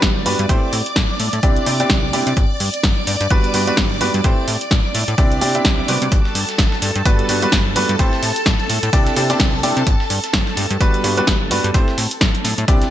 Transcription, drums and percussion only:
0.02 kick, snare, closed hi-hat
0.26 open hi-hat
0.39 closed hi-hat
0.49 kick, closed hi-hat
0.73 open hi-hat
0.86 closed hi-hat
0.96 kick, snare, closed hi-hat
1.20 open hi-hat
1.33 closed hi-hat
1.43 kick, closed hi-hat
1.56 closed hi-hat
1.66 open hi-hat
1.80 closed hi-hat
1.90 kick, snare, closed hi-hat
2.13 open hi-hat
2.27 closed hi-hat
2.37 kick, closed hi-hat
2.60 open hi-hat
2.74 closed hi-hat
2.83 kick, snare, closed hi-hat
3.07 open hi-hat
3.21 closed hi-hat
3.30 kick, closed hi-hat
3.44 closed hi-hat
3.54 open hi-hat
3.67 closed hi-hat
3.77 kick, snare, closed hi-hat
4.01 open hi-hat
4.14 closed hi-hat
4.24 kick, closed hi-hat
4.48 open hi-hat
4.61 closed hi-hat
4.71 kick, snare, closed hi-hat
4.95 open hi-hat
5.08 closed hi-hat
5.18 kick, closed hi-hat
5.32 closed hi-hat
5.41 open hi-hat
5.55 closed hi-hat
5.65 kick, snare, closed hi-hat
5.88 open hi-hat
6.02 closed hi-hat
6.12 kick, closed hi-hat
6.25 snare
6.35 closed hi-hat, open hi-hat
6.49 snare, closed hi-hat
6.58 kick, snare, closed hi-hat
6.72 snare
6.82 closed hi-hat, open hi-hat
6.96 closed hi-hat
7.05 kick, closed hi-hat
7.19 closed hi-hat
7.29 closed hi-hat, open hi-hat
7.42 closed hi-hat
7.52 kick, snare, closed hi-hat
7.76 closed hi-hat, open hi-hat
7.89 closed hi-hat
7.99 kick, closed hi-hat
8.13 snare
8.23 open hi-hat
8.36 closed hi-hat
8.46 kick, snare, closed hi-hat
8.60 closed hi-hat
8.70 closed hi-hat, open hi-hat
8.83 closed hi-hat
8.93 kick, closed hi-hat
9.06 snare, closed hi-hat
9.16 closed hi-hat, open hi-hat
9.30 snare, closed hi-hat
9.40 kick, snare, closed hi-hat
9.63 closed hi-hat, open hi-hat
9.77 closed hi-hat
9.87 kick, closed hi-hat
10.00 snare
10.10 closed hi-hat, open hi-hat
10.24 snare, closed hi-hat
10.33 kick, snare, closed hi-hat
10.47 snare
10.57 closed hi-hat, open hi-hat
10.71 closed hi-hat
10.81 kick, closed hi-hat
10.94 closed hi-hat
11.04 closed hi-hat, open hi-hat
11.17 closed hi-hat
11.27 kick, snare, closed hi-hat
11.51 closed hi-hat, open hi-hat
11.64 closed hi-hat
11.74 kick, closed hi-hat
11.88 snare
11.98 open hi-hat
12.11 closed hi-hat
12.21 kick, snare, closed hi-hat
12.35 closed hi-hat
12.44 snare, closed hi-hat, open hi-hat
12.58 closed hi-hat
12.68 kick, closed hi-hat
12.82 snare, closed hi-hat

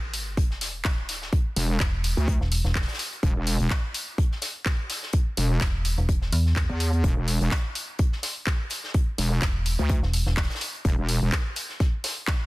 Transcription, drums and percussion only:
0.13 closed hi-hat, open hi-hat
0.37 kick, closed hi-hat
0.51 snare
0.61 snare, closed hi-hat, open hi-hat
0.85 kick, snare, clap, closed hi-hat
1.09 snare, closed hi-hat, open hi-hat
1.22 snare
1.32 kick, closed hi-hat
1.56 closed hi-hat, open hi-hat
1.80 kick, snare, clap, closed hi-hat
2.04 closed hi-hat, open hi-hat
2.17 closed hi-hat
2.28 kick, closed hi-hat
2.41 snare
2.52 closed hi-hat, open hi-hat
2.65 snare
2.75 kick, snare, clap, closed hi-hat
2.81 snare, closed hi-hat
2.88 snare, closed hi-hat
2.94 snare, closed hi-hat
2.99 snare, closed hi-hat, open hi-hat
3.13 closed hi-hat
3.23 kick, closed hi-hat
3.47 closed hi-hat, open hi-hat
3.60 closed hi-hat
3.71 kick, snare, clap, closed hi-hat
3.94 closed hi-hat, open hi-hat
4.18 kick, closed hi-hat
4.32 snare
4.42 snare, closed hi-hat, open hi-hat
4.66 kick, snare, clap, closed hi-hat
4.90 snare, closed hi-hat, open hi-hat
5.03 snare
5.13 kick, closed hi-hat
5.37 closed hi-hat, open hi-hat
5.61 kick, snare, clap, closed hi-hat
5.85 closed hi-hat, open hi-hat
5.98 closed hi-hat
6.09 kick, closed hi-hat
6.22 snare
6.32 closed hi-hat, open hi-hat
6.46 snare
6.55 kick, snare, clap, closed hi-hat
6.80 snare, closed hi-hat, open hi-hat
6.93 closed hi-hat
7.04 kick, closed hi-hat
7.28 closed hi-hat, open hi-hat
7.41 closed hi-hat
7.51 kick, snare, clap, closed hi-hat
7.75 closed hi-hat, open hi-hat
7.99 kick, closed hi-hat
8.12 snare
8.23 snare, closed hi-hat, open hi-hat
8.47 kick, snare, clap, closed hi-hat
8.70 snare, closed hi-hat, open hi-hat
8.84 snare
8.94 kick, closed hi-hat
9.18 closed hi-hat, open hi-hat
9.42 kick, snare, clap, closed hi-hat
9.66 closed hi-hat, open hi-hat
9.79 closed hi-hat
9.89 kick, closed hi-hat
10.03 snare
10.13 closed hi-hat, open hi-hat
10.26 snare
10.37 kick, snare, clap, closed hi-hat
10.43 snare, closed hi-hat
10.50 snare, closed hi-hat
10.55 snare, closed hi-hat
10.61 snare, closed hi-hat, open hi-hat
10.75 closed hi-hat
10.85 kick, closed hi-hat
11.09 closed hi-hat, open hi-hat
11.22 closed hi-hat
11.32 kick, snare, clap, closed hi-hat
11.56 closed hi-hat, open hi-hat
11.69 snare
11.80 kick, snare, closed hi-hat
12.04 snare, closed hi-hat, open hi-hat
12.28 kick, snare, clap, closed hi-hat

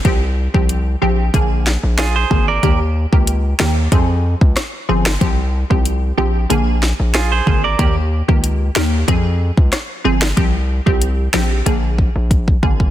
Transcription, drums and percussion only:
0.05 kick, closed hi-hat
0.54 kick
0.69 closed hi-hat
1.34 kick, closed hi-hat
1.67 snare
1.98 cross-stick, snare, closed hi-hat
2.31 kick
2.63 kick, closed hi-hat
3.13 kick
3.27 closed hi-hat
3.60 snare
3.92 kick, closed hi-hat
4.41 kick
4.57 cross-stick, snare, closed hi-hat
5.06 snare
5.21 kick, closed hi-hat
5.71 kick
5.85 closed hi-hat
6.50 closed hi-hat
6.83 snare
7.14 cross-stick, snare, closed hi-hat
7.47 kick
7.79 kick, closed hi-hat
8.29 kick
8.44 closed hi-hat
8.76 snare
9.08 kick, closed hi-hat
9.57 kick
9.73 cross-stick, snare, closed hi-hat
10.22 snare
10.37 kick, closed hi-hat
10.87 kick
11.01 closed hi-hat
11.34 snare
11.66 kick, closed hi-hat
11.98 kick
12.31 kick, closed hi-hat
12.48 kick
12.63 kick
12.80 kick

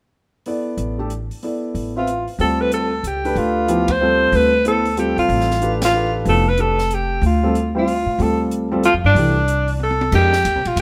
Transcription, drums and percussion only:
0.46 open hi-hat
0.78 closed hi-hat
1.10 closed hi-hat
1.31 open hi-hat
1.43 open hi-hat
1.75 open hi-hat
2.07 closed hi-hat
2.28 open hi-hat
2.39 open hi-hat
2.72 closed hi-hat
3.04 closed hi-hat
3.25 open hi-hat
3.36 open hi-hat
3.68 closed hi-hat
3.88 kick, ride
4.33 open hi-hat
4.65 closed hi-hat
4.85 open hi-hat
4.97 closed hi-hat
5.18 open hi-hat
5.30 open hi-hat
5.41 snare
5.51 snare
5.62 closed hi-hat
5.82 snare, ride
6.25 open hi-hat
6.58 closed hi-hat
6.78 snare
6.91 closed hi-hat
7.23 open hi-hat
7.55 closed hi-hat
7.88 open hi-hat
8.19 open hi-hat
8.51 closed hi-hat
8.83 closed hi-hat
9.16 open hi-hat
9.48 closed hi-hat
9.68 open hi-hat
9.80 high tom
9.91 high tom
10.01 high tom
10.12 kick, crash
10.33 snare
10.45 hi-hat pedal, ride
10.65 ride
10.77 hi-hat pedal, ride

